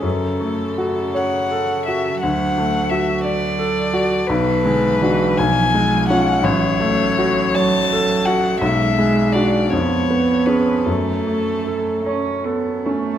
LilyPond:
<<
  \new Staff \with { instrumentName = "Violin" } { \time 6/8 \key fis \minor \tempo 4. = 55 a'4. fis''4 e''8 | fis''4 e''8 d''4. | b'4. gis''4 fis''8 | cis''4. a''4 fis''8 |
e''4 d''8 cis''4 b'8 | a'4. r4. | }
  \new Staff \with { instrumentName = "Grand piano" } { \time 6/8 \key fis \minor fis,8 a8 fis'8 cis''8 a'8 fis'8 | d,8 a8 fis'8 d''8 a'8 fis'8 | b,,8 gis8 <d' fis'>8 b,,8 gis8 <cis' eis'>8 | a,,8 a8 fis'8 cis''8 a'8 fis'8 |
b,,8 gis8 <d' fis'>8 eis,8 b8 <cis' gis'>8 | fis,8 a8 a'8 cis''8 a'8 cis'8 | }
  \new Staff \with { instrumentName = "Cello" } { \clef bass \time 6/8 \key fis \minor cis2. | fis2. | fis8 d8 e8 eis4. | fis4. fis4. |
gis4. b4. | a4. cis'8 b8 a8 | }
>>